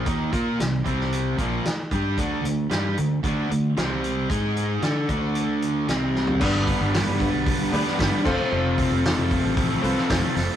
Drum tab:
CC |----------------|----------------|----------------|x-------------x-|
HH |x-x-x-x-x-x-x-x-|x-x-x-x-x-x-x-x-|x-x-x-x-x-x-x---|--o-o-o-o-o-o---|
SD |----o--o----o---|----o-------o---|----o-------o-o-|----o------oo-o-|
FT |----------------|----------------|---------------o|----------------|
BD |o-o---o---o---o-|o-------o-------|o-----o---------|o-o---o-o---o-o-|

CC |----------------|
HH |--o-o-o-o-o-o-o-|
SD |----o------oo-o-|
FT |----------------|
BD |--o---o-o---o---|